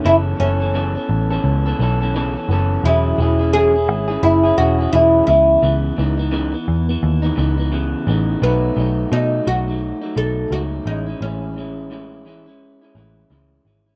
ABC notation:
X:1
M:4/4
L:1/16
Q:"Swing 16ths" 1/4=86
K:Bmix
V:1 name="Oud"
E2 C12 z2 | E4 G4 E2 F2 E2 E2- | E12- E2 z2 | B,4 D2 F4 A2 F2 D2 |
C12 z4 |]
V:2 name="Clean electric guitar"
[F,,C,E,B,CA]2 [E,B,CA] [E,B,CA] [F,,C,E,B,CA] [E,B,CA]2 [E,B,CA]2 [E,B,CA] [E,B,CA] [E,B,CA] [F,,C,E,B,CA] [E,B,CA] [E,B,CA]2 | [E,F,CEG]2 [F,CEG] [CEG] [E,F,CEG] [CEG]2 [CEG]2 [CEG] [F,CEG] [CEG] [E,F,CEG]2 [C,E,B,]2 | [C,E,B,]2 [C,E,B,D] [E,B,D] [C,E,B,D] [E,B,]2 [E,B,]2 [E,B,D] [C,E,B,D] [E,B,D] [C,E,B,]2 [C,E,B,D]2 | [B,,F,A,D]2 [B,,F,A,D]2 [B,,F,A,D]2 [B,,F,A,D] [F,A,D]2 [F,A,D] [B,,F,A,D]2 [B,,F,A,D]2 [E,G,CE] [G,CE] |
[A,,E,G,CE]2 [E,G,CE]2 [A,,E,G,CE]2 [E,G,CE] [G,CE]2 [G,CE] [E,G,CE]2 [A,,E,G,CE]2 [E,G,CE] [G,CE] |]
V:3 name="Picked electric bass" clef=bass
F,,,2 F,,,4 A,,,2 C,,2 B,,,4 F,,,2 | E,,,2 E,,,4 G,,,2 F,,,2 E,,,2 E,,,2 C,,2 | C,,2 C,,4 E,,2 D,,2 C,,4 A,,,2 | B,,,2 B,,,2 B,,2 B,,,3 z B,,,2 C,,2 A,,,2 |
A,,,8- A,,, z A,,,2 C,,2 G,,,2 |]